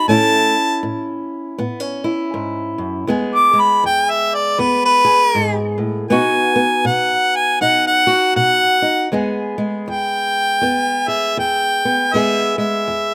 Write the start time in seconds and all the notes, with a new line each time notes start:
0.08 A2 A3 C#4 E4 A5
0.83 A2
1.58 A2 B3
1.80 C#4
2.04 E4
2.34 G#2
2.78 F#2
3.07 E2 G#3 B3 G#4
3.35 D6
3.53 G#3
3.61 B5
3.84 E2 G5
4.10 E5
4.34 D5
4.58 E2 B3 B4
4.86 B4
5.05 G#4
5.35 G#2
5.78 A2
6.10 B2 B3 D#4 F#4 G#5
6.56 B3
6.85 B2 F#5
7.36 G#5
7.61 B2 D#4 F#5
7.87 F#5
8.07 F#4
8.36 B2 F#5
8.82 D#4
9.12 E2 G#3 B3 G#4
9.58 G#3
9.88 E2 G5
10.61 E2 B3
11.08 G#4 E5
11.37 E2 G5
11.85 B3
12.14 E2 G#3 B3 G#4 E5
12.58 G#3 E5
12.88 E2